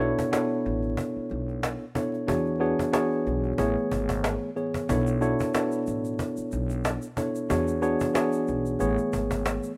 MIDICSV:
0, 0, Header, 1, 6, 480
1, 0, Start_track
1, 0, Tempo, 652174
1, 1680, Time_signature, 4, 2, 24, 8
1, 7193, End_track
2, 0, Start_track
2, 0, Title_t, "Tine electric piano"
2, 0, Program_c, 0, 4
2, 0, Note_on_c, 0, 47, 94
2, 0, Note_on_c, 0, 59, 79
2, 0, Note_on_c, 0, 62, 89
2, 0, Note_on_c, 0, 64, 85
2, 0, Note_on_c, 0, 69, 81
2, 0, Note_on_c, 0, 73, 101
2, 218, Note_off_c, 0, 47, 0
2, 219, Note_off_c, 0, 59, 0
2, 220, Note_off_c, 0, 62, 0
2, 221, Note_off_c, 0, 64, 0
2, 221, Note_off_c, 0, 69, 0
2, 222, Note_off_c, 0, 73, 0
2, 233, Note_on_c, 0, 47, 86
2, 236, Note_on_c, 0, 59, 85
2, 237, Note_on_c, 0, 62, 83
2, 239, Note_on_c, 0, 64, 78
2, 241, Note_on_c, 0, 69, 79
2, 243, Note_on_c, 0, 73, 96
2, 1349, Note_off_c, 0, 47, 0
2, 1351, Note_off_c, 0, 59, 0
2, 1351, Note_off_c, 0, 62, 0
2, 1352, Note_off_c, 0, 64, 0
2, 1353, Note_off_c, 0, 69, 0
2, 1354, Note_off_c, 0, 73, 0
2, 1436, Note_on_c, 0, 47, 77
2, 1438, Note_on_c, 0, 59, 69
2, 1440, Note_on_c, 0, 62, 67
2, 1442, Note_on_c, 0, 64, 71
2, 1443, Note_on_c, 0, 69, 67
2, 1445, Note_on_c, 0, 73, 87
2, 1661, Note_off_c, 0, 47, 0
2, 1661, Note_off_c, 0, 59, 0
2, 1663, Note_off_c, 0, 62, 0
2, 1664, Note_off_c, 0, 64, 0
2, 1664, Note_off_c, 0, 69, 0
2, 1665, Note_off_c, 0, 73, 0
2, 1674, Note_on_c, 0, 52, 88
2, 1675, Note_on_c, 0, 59, 76
2, 1677, Note_on_c, 0, 62, 83
2, 1680, Note_on_c, 0, 66, 89
2, 1681, Note_on_c, 0, 68, 79
2, 1683, Note_on_c, 0, 73, 100
2, 1900, Note_off_c, 0, 52, 0
2, 1900, Note_off_c, 0, 59, 0
2, 1901, Note_off_c, 0, 62, 0
2, 1902, Note_off_c, 0, 66, 0
2, 1903, Note_off_c, 0, 68, 0
2, 1904, Note_off_c, 0, 73, 0
2, 1910, Note_on_c, 0, 52, 94
2, 1912, Note_on_c, 0, 59, 77
2, 1914, Note_on_c, 0, 62, 88
2, 1916, Note_on_c, 0, 66, 82
2, 1918, Note_on_c, 0, 68, 85
2, 1920, Note_on_c, 0, 73, 107
2, 2138, Note_off_c, 0, 52, 0
2, 2139, Note_off_c, 0, 59, 0
2, 2140, Note_off_c, 0, 62, 0
2, 2141, Note_off_c, 0, 66, 0
2, 2142, Note_off_c, 0, 68, 0
2, 2143, Note_off_c, 0, 73, 0
2, 2150, Note_on_c, 0, 52, 87
2, 2153, Note_on_c, 0, 59, 80
2, 2154, Note_on_c, 0, 62, 80
2, 2156, Note_on_c, 0, 66, 80
2, 2158, Note_on_c, 0, 68, 93
2, 2160, Note_on_c, 0, 73, 95
2, 2625, Note_off_c, 0, 52, 0
2, 2627, Note_off_c, 0, 59, 0
2, 2630, Note_off_c, 0, 68, 0
2, 2631, Note_on_c, 0, 57, 90
2, 2632, Note_off_c, 0, 73, 0
2, 2634, Note_on_c, 0, 52, 83
2, 2636, Note_on_c, 0, 59, 82
2, 2637, Note_off_c, 0, 62, 0
2, 2638, Note_off_c, 0, 66, 0
2, 2639, Note_on_c, 0, 68, 86
2, 2641, Note_on_c, 0, 73, 102
2, 3303, Note_off_c, 0, 57, 0
2, 3304, Note_off_c, 0, 52, 0
2, 3306, Note_off_c, 0, 59, 0
2, 3307, Note_off_c, 0, 68, 0
2, 3308, Note_off_c, 0, 73, 0
2, 3352, Note_on_c, 0, 45, 78
2, 3354, Note_on_c, 0, 52, 67
2, 3357, Note_on_c, 0, 59, 69
2, 3359, Note_on_c, 0, 68, 72
2, 3361, Note_on_c, 0, 73, 80
2, 3579, Note_off_c, 0, 45, 0
2, 3580, Note_off_c, 0, 52, 0
2, 3581, Note_off_c, 0, 59, 0
2, 3582, Note_off_c, 0, 68, 0
2, 3583, Note_off_c, 0, 73, 0
2, 3598, Note_on_c, 0, 47, 94
2, 3600, Note_on_c, 0, 59, 88
2, 3602, Note_on_c, 0, 62, 81
2, 3604, Note_on_c, 0, 64, 82
2, 3606, Note_on_c, 0, 69, 86
2, 3607, Note_on_c, 0, 73, 101
2, 3822, Note_off_c, 0, 47, 0
2, 3823, Note_off_c, 0, 59, 0
2, 3824, Note_off_c, 0, 62, 0
2, 3824, Note_off_c, 0, 64, 0
2, 3825, Note_off_c, 0, 69, 0
2, 3826, Note_off_c, 0, 73, 0
2, 3830, Note_on_c, 0, 47, 98
2, 3832, Note_on_c, 0, 59, 77
2, 3834, Note_on_c, 0, 62, 88
2, 3836, Note_on_c, 0, 64, 88
2, 3838, Note_on_c, 0, 69, 82
2, 3840, Note_on_c, 0, 73, 103
2, 4058, Note_off_c, 0, 47, 0
2, 4059, Note_off_c, 0, 59, 0
2, 4060, Note_off_c, 0, 62, 0
2, 4061, Note_off_c, 0, 64, 0
2, 4062, Note_off_c, 0, 69, 0
2, 4063, Note_off_c, 0, 73, 0
2, 4077, Note_on_c, 0, 47, 88
2, 4078, Note_on_c, 0, 59, 86
2, 4080, Note_on_c, 0, 62, 82
2, 4082, Note_on_c, 0, 64, 80
2, 4083, Note_on_c, 0, 69, 76
2, 4086, Note_on_c, 0, 73, 90
2, 5191, Note_off_c, 0, 47, 0
2, 5192, Note_off_c, 0, 59, 0
2, 5193, Note_off_c, 0, 62, 0
2, 5194, Note_off_c, 0, 64, 0
2, 5194, Note_off_c, 0, 69, 0
2, 5195, Note_off_c, 0, 73, 0
2, 5274, Note_on_c, 0, 47, 73
2, 5275, Note_on_c, 0, 59, 68
2, 5278, Note_on_c, 0, 62, 70
2, 5279, Note_on_c, 0, 64, 72
2, 5281, Note_on_c, 0, 69, 71
2, 5283, Note_on_c, 0, 73, 89
2, 5500, Note_off_c, 0, 47, 0
2, 5500, Note_off_c, 0, 59, 0
2, 5501, Note_off_c, 0, 62, 0
2, 5502, Note_off_c, 0, 64, 0
2, 5503, Note_off_c, 0, 69, 0
2, 5504, Note_off_c, 0, 73, 0
2, 5515, Note_on_c, 0, 52, 90
2, 5516, Note_on_c, 0, 59, 78
2, 5518, Note_on_c, 0, 62, 81
2, 5521, Note_on_c, 0, 66, 86
2, 5522, Note_on_c, 0, 68, 80
2, 5524, Note_on_c, 0, 73, 103
2, 5740, Note_off_c, 0, 52, 0
2, 5741, Note_off_c, 0, 59, 0
2, 5742, Note_off_c, 0, 62, 0
2, 5743, Note_off_c, 0, 66, 0
2, 5744, Note_off_c, 0, 68, 0
2, 5744, Note_off_c, 0, 73, 0
2, 5749, Note_on_c, 0, 52, 95
2, 5751, Note_on_c, 0, 59, 78
2, 5754, Note_on_c, 0, 62, 90
2, 5756, Note_on_c, 0, 66, 85
2, 5757, Note_on_c, 0, 68, 83
2, 5759, Note_on_c, 0, 73, 109
2, 5977, Note_off_c, 0, 52, 0
2, 5978, Note_off_c, 0, 59, 0
2, 5979, Note_off_c, 0, 62, 0
2, 5980, Note_off_c, 0, 66, 0
2, 5981, Note_off_c, 0, 68, 0
2, 5982, Note_off_c, 0, 73, 0
2, 5991, Note_on_c, 0, 52, 87
2, 5993, Note_on_c, 0, 59, 81
2, 5995, Note_on_c, 0, 62, 82
2, 5998, Note_on_c, 0, 66, 82
2, 5999, Note_on_c, 0, 68, 91
2, 6001, Note_on_c, 0, 73, 97
2, 6464, Note_off_c, 0, 52, 0
2, 6466, Note_off_c, 0, 59, 0
2, 6469, Note_off_c, 0, 68, 0
2, 6471, Note_off_c, 0, 73, 0
2, 6471, Note_on_c, 0, 57, 89
2, 6473, Note_on_c, 0, 52, 86
2, 6475, Note_on_c, 0, 59, 86
2, 6478, Note_off_c, 0, 62, 0
2, 6478, Note_on_c, 0, 68, 86
2, 6479, Note_off_c, 0, 66, 0
2, 6480, Note_on_c, 0, 73, 102
2, 7143, Note_off_c, 0, 57, 0
2, 7144, Note_off_c, 0, 52, 0
2, 7145, Note_off_c, 0, 59, 0
2, 7147, Note_off_c, 0, 68, 0
2, 7148, Note_off_c, 0, 73, 0
2, 7193, End_track
3, 0, Start_track
3, 0, Title_t, "Upright bass"
3, 0, Program_c, 1, 32
3, 0, Note_on_c, 1, 35, 112
3, 82, Note_off_c, 1, 35, 0
3, 485, Note_on_c, 1, 33, 87
3, 690, Note_off_c, 1, 33, 0
3, 965, Note_on_c, 1, 35, 91
3, 1283, Note_off_c, 1, 35, 0
3, 1683, Note_on_c, 1, 40, 102
3, 2002, Note_off_c, 1, 40, 0
3, 2405, Note_on_c, 1, 35, 88
3, 2610, Note_off_c, 1, 35, 0
3, 2639, Note_on_c, 1, 33, 104
3, 2752, Note_off_c, 1, 33, 0
3, 2884, Note_on_c, 1, 32, 97
3, 3202, Note_off_c, 1, 32, 0
3, 3603, Note_on_c, 1, 35, 109
3, 3922, Note_off_c, 1, 35, 0
3, 4325, Note_on_c, 1, 33, 90
3, 4530, Note_off_c, 1, 33, 0
3, 4805, Note_on_c, 1, 35, 95
3, 5123, Note_off_c, 1, 35, 0
3, 5523, Note_on_c, 1, 40, 103
3, 5842, Note_off_c, 1, 40, 0
3, 6245, Note_on_c, 1, 35, 90
3, 6450, Note_off_c, 1, 35, 0
3, 6485, Note_on_c, 1, 33, 102
3, 6596, Note_off_c, 1, 33, 0
3, 6723, Note_on_c, 1, 32, 93
3, 7042, Note_off_c, 1, 32, 0
3, 7193, End_track
4, 0, Start_track
4, 0, Title_t, "Cajon"
4, 5, Note_on_c, 9, 38, 39
4, 78, Note_off_c, 9, 38, 0
4, 137, Note_on_c, 9, 36, 87
4, 210, Note_off_c, 9, 36, 0
4, 242, Note_on_c, 9, 38, 110
4, 315, Note_off_c, 9, 38, 0
4, 482, Note_on_c, 9, 38, 42
4, 556, Note_off_c, 9, 38, 0
4, 609, Note_on_c, 9, 38, 29
4, 683, Note_off_c, 9, 38, 0
4, 716, Note_on_c, 9, 36, 90
4, 790, Note_off_c, 9, 36, 0
4, 860, Note_on_c, 9, 38, 19
4, 934, Note_off_c, 9, 38, 0
4, 953, Note_on_c, 9, 38, 39
4, 1027, Note_off_c, 9, 38, 0
4, 1094, Note_on_c, 9, 38, 30
4, 1168, Note_off_c, 9, 38, 0
4, 1202, Note_on_c, 9, 38, 113
4, 1275, Note_off_c, 9, 38, 0
4, 1437, Note_on_c, 9, 36, 95
4, 1510, Note_off_c, 9, 36, 0
4, 1574, Note_on_c, 9, 38, 34
4, 1647, Note_off_c, 9, 38, 0
4, 1680, Note_on_c, 9, 36, 116
4, 1754, Note_off_c, 9, 36, 0
4, 1803, Note_on_c, 9, 38, 20
4, 1810, Note_off_c, 9, 38, 0
4, 1810, Note_on_c, 9, 38, 35
4, 1883, Note_off_c, 9, 38, 0
4, 1923, Note_on_c, 9, 38, 37
4, 1997, Note_off_c, 9, 38, 0
4, 2056, Note_on_c, 9, 36, 89
4, 2130, Note_off_c, 9, 36, 0
4, 2160, Note_on_c, 9, 38, 106
4, 2234, Note_off_c, 9, 38, 0
4, 2295, Note_on_c, 9, 38, 20
4, 2369, Note_off_c, 9, 38, 0
4, 2401, Note_on_c, 9, 38, 43
4, 2475, Note_off_c, 9, 38, 0
4, 2528, Note_on_c, 9, 38, 29
4, 2602, Note_off_c, 9, 38, 0
4, 2636, Note_on_c, 9, 36, 86
4, 2710, Note_off_c, 9, 36, 0
4, 2779, Note_on_c, 9, 38, 20
4, 2852, Note_off_c, 9, 38, 0
4, 2881, Note_on_c, 9, 36, 95
4, 2955, Note_off_c, 9, 36, 0
4, 3010, Note_on_c, 9, 36, 95
4, 3083, Note_off_c, 9, 36, 0
4, 3121, Note_on_c, 9, 38, 113
4, 3195, Note_off_c, 9, 38, 0
4, 3248, Note_on_c, 9, 38, 20
4, 3322, Note_off_c, 9, 38, 0
4, 3361, Note_on_c, 9, 38, 42
4, 3434, Note_off_c, 9, 38, 0
4, 3491, Note_on_c, 9, 36, 90
4, 3565, Note_off_c, 9, 36, 0
4, 3601, Note_on_c, 9, 36, 114
4, 3674, Note_off_c, 9, 36, 0
4, 3844, Note_on_c, 9, 38, 37
4, 3918, Note_off_c, 9, 38, 0
4, 3977, Note_on_c, 9, 36, 89
4, 4050, Note_off_c, 9, 36, 0
4, 4081, Note_on_c, 9, 38, 113
4, 4155, Note_off_c, 9, 38, 0
4, 4322, Note_on_c, 9, 38, 42
4, 4396, Note_off_c, 9, 38, 0
4, 4449, Note_on_c, 9, 38, 29
4, 4523, Note_off_c, 9, 38, 0
4, 4556, Note_on_c, 9, 36, 92
4, 4630, Note_off_c, 9, 36, 0
4, 4699, Note_on_c, 9, 38, 20
4, 4773, Note_off_c, 9, 38, 0
4, 4793, Note_on_c, 9, 38, 42
4, 4866, Note_off_c, 9, 38, 0
4, 4933, Note_on_c, 9, 38, 31
4, 5007, Note_off_c, 9, 38, 0
4, 5041, Note_on_c, 9, 38, 114
4, 5115, Note_off_c, 9, 38, 0
4, 5277, Note_on_c, 9, 36, 94
4, 5350, Note_off_c, 9, 36, 0
4, 5413, Note_on_c, 9, 38, 34
4, 5486, Note_off_c, 9, 38, 0
4, 5520, Note_on_c, 9, 36, 115
4, 5594, Note_off_c, 9, 36, 0
4, 5643, Note_on_c, 9, 38, 20
4, 5716, Note_off_c, 9, 38, 0
4, 5762, Note_on_c, 9, 38, 38
4, 5836, Note_off_c, 9, 38, 0
4, 5896, Note_on_c, 9, 36, 90
4, 5970, Note_off_c, 9, 36, 0
4, 5999, Note_on_c, 9, 38, 113
4, 6073, Note_off_c, 9, 38, 0
4, 6241, Note_on_c, 9, 38, 43
4, 6314, Note_off_c, 9, 38, 0
4, 6368, Note_on_c, 9, 38, 28
4, 6442, Note_off_c, 9, 38, 0
4, 6469, Note_on_c, 9, 38, 42
4, 6542, Note_off_c, 9, 38, 0
4, 6618, Note_on_c, 9, 38, 19
4, 6692, Note_off_c, 9, 38, 0
4, 6721, Note_on_c, 9, 36, 90
4, 6794, Note_off_c, 9, 36, 0
4, 6850, Note_on_c, 9, 36, 98
4, 6923, Note_off_c, 9, 36, 0
4, 6960, Note_on_c, 9, 38, 114
4, 7033, Note_off_c, 9, 38, 0
4, 7193, End_track
5, 0, Start_track
5, 0, Title_t, "Muted upright bass strokes"
5, 856, Note_on_c, 9, 29, 48
5, 929, Note_off_c, 9, 29, 0
5, 2776, Note_on_c, 9, 29, 48
5, 2849, Note_off_c, 9, 29, 0
5, 4696, Note_on_c, 9, 29, 51
5, 4770, Note_off_c, 9, 29, 0
5, 6616, Note_on_c, 9, 29, 50
5, 6690, Note_off_c, 9, 29, 0
5, 7193, End_track
6, 0, Start_track
6, 0, Title_t, "Drums"
6, 3603, Note_on_c, 9, 82, 68
6, 3677, Note_off_c, 9, 82, 0
6, 3730, Note_on_c, 9, 82, 55
6, 3804, Note_off_c, 9, 82, 0
6, 3841, Note_on_c, 9, 82, 45
6, 3915, Note_off_c, 9, 82, 0
6, 3969, Note_on_c, 9, 82, 55
6, 4042, Note_off_c, 9, 82, 0
6, 4080, Note_on_c, 9, 82, 73
6, 4154, Note_off_c, 9, 82, 0
6, 4207, Note_on_c, 9, 82, 44
6, 4281, Note_off_c, 9, 82, 0
6, 4318, Note_on_c, 9, 82, 51
6, 4392, Note_off_c, 9, 82, 0
6, 4451, Note_on_c, 9, 82, 45
6, 4524, Note_off_c, 9, 82, 0
6, 4558, Note_on_c, 9, 82, 69
6, 4631, Note_off_c, 9, 82, 0
6, 4688, Note_on_c, 9, 82, 53
6, 4762, Note_off_c, 9, 82, 0
6, 4798, Note_on_c, 9, 82, 51
6, 4871, Note_off_c, 9, 82, 0
6, 4930, Note_on_c, 9, 82, 49
6, 5004, Note_off_c, 9, 82, 0
6, 5040, Note_on_c, 9, 82, 63
6, 5114, Note_off_c, 9, 82, 0
6, 5168, Note_on_c, 9, 82, 56
6, 5241, Note_off_c, 9, 82, 0
6, 5278, Note_on_c, 9, 82, 51
6, 5352, Note_off_c, 9, 82, 0
6, 5413, Note_on_c, 9, 82, 55
6, 5486, Note_off_c, 9, 82, 0
6, 5523, Note_on_c, 9, 82, 69
6, 5596, Note_off_c, 9, 82, 0
6, 5650, Note_on_c, 9, 82, 56
6, 5724, Note_off_c, 9, 82, 0
6, 5760, Note_on_c, 9, 82, 47
6, 5834, Note_off_c, 9, 82, 0
6, 5889, Note_on_c, 9, 82, 57
6, 5962, Note_off_c, 9, 82, 0
6, 6001, Note_on_c, 9, 82, 72
6, 6074, Note_off_c, 9, 82, 0
6, 6127, Note_on_c, 9, 82, 46
6, 6200, Note_off_c, 9, 82, 0
6, 6238, Note_on_c, 9, 82, 49
6, 6311, Note_off_c, 9, 82, 0
6, 6372, Note_on_c, 9, 82, 44
6, 6446, Note_off_c, 9, 82, 0
6, 6480, Note_on_c, 9, 82, 71
6, 6553, Note_off_c, 9, 82, 0
6, 6609, Note_on_c, 9, 82, 52
6, 6683, Note_off_c, 9, 82, 0
6, 6720, Note_on_c, 9, 82, 52
6, 6793, Note_off_c, 9, 82, 0
6, 6852, Note_on_c, 9, 82, 50
6, 6926, Note_off_c, 9, 82, 0
6, 6961, Note_on_c, 9, 82, 63
6, 7034, Note_off_c, 9, 82, 0
6, 7090, Note_on_c, 9, 82, 56
6, 7163, Note_off_c, 9, 82, 0
6, 7193, End_track
0, 0, End_of_file